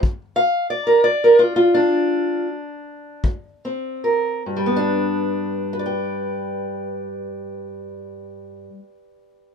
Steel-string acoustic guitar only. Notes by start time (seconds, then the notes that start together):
0.00 G2
0.36 F5
0.70 D5
0.87 A#4
1.04 D5
1.24 A#4
1.39 F4
1.56 F4
1.74 D4
3.24 G#2
3.65 C4
4.04 A#4
4.46 G2
4.57 G3
4.66 B3
4.76 D4
5.73 B4
5.79 D5
5.86 G5